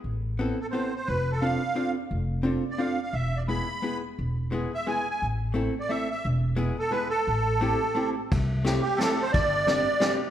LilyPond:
<<
  \new Staff \with { instrumentName = "Accordion" } { \time 3/4 \key a \minor \tempo 4 = 175 r4 \tuplet 3/2 { r4 a'8 c''4 c''8 } | \tuplet 3/2 { b'4 a'8 } f''4. r8 | r4 \tuplet 3/2 { r4 d''8 f''4 f''8 } | \tuplet 3/2 { e''4 d''8 } b''4. r8 |
r4 \tuplet 3/2 { r4 e''8 gis''4 gis''8~ } | gis''16 r8. \tuplet 3/2 { r4 d''8 e''4 e''8~ } | e''16 r8. \tuplet 3/2 { r4 a'8 } b'8 a'8~ | a'2~ a'8 r8 |
\key c \major r4. g'8 a'8. c''16 | d''2~ d''8 r8 | }
  \new Staff \with { instrumentName = "Hollow-body jazz guitar" } { \time 3/4 \key a \minor r4 <b c' e' a'>8 r8 <b c' e' a'>8 r8 | r4 <c' d' f' a'>8 r8 <c' d' f' a'>8 r8 | r4 <c' d' f' a'>8 r8 <c' d' f' a'>8 r8 | r4 <gis b e' gis'>8 r8 <gis b e' gis'>8 r8 |
r4 <gis b e' gis'>8 r8 <gis b e' gis'>8 r8 | r4 <a c' e' a'>8 r8 <a c' e' a'>8 r8 | r4 <gis b e' gis'>8 r8 <gis b e' gis'>8 r8 | r4 <a c' e' g'>8 r8 <a c' e' g'>8 r8 |
\key c \major r4 <a c' e' g'>8 r8 <a c' e' g'>8 r8 | r4 <g c' d' g'>8 r8 <g c' d' g'>8 r8 | }
  \new Staff \with { instrumentName = "Upright bass" } { \clef bass \time 3/4 \key a \minor a,,2 r4 | f,,2 r4 | f,,2 r4 | e,,2 r4 |
e,,2 r4 | a,,2 r4 | e,,2 r4 | a,,2 r4 |
\key c \major c,2 r4 | g,,2 r4 | }
  \new DrumStaff \with { instrumentName = "Drums" } \drummode { \time 3/4 r4 r4 r4 | r4 r4 r4 | r4 r4 r4 | r4 r4 r4 |
r4 r4 r4 | r4 r4 r4 | r4 r4 r4 | r4 r4 r4 |
<bd cymr>4 <cymr sn>4 <cymr sn>4 | <bd cymr>4 <cymr sn>4 <cymr sn>4 | }
>>